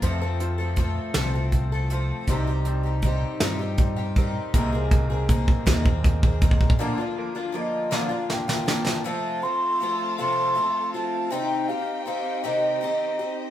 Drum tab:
HH |x---x---x---x---x---x---|x---x---x---x---x---x---|x---x---x---x---x---x---|------------------------|
SD |------------o-----------|------------o-----------|------------o-----------|------------o---o-o-o-o-|
BD |o-------o-------o-------|o-------o-------o---o---|o---o---o-o-o-o-o-o-oooo|------------------------|

HH |------------------------|------------------------|
SD |------------------------|------------------------|
BD |------------------------|------------------------|